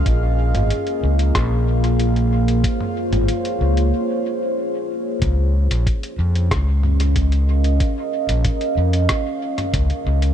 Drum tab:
HH |x--xxx-xx--xxx-x|x--xxx-x--------|x--xxx-xx--xxx-x|x--xxx-xx--xxx-x|
SD |--------r-------|----------------|--------r-------|--------r-------|
T2 |---o------------|-o-o------------|----------o-----|-----------o----|
BD |o-------o-------|o---------------|o---o---o---o---|o---o---o---o---|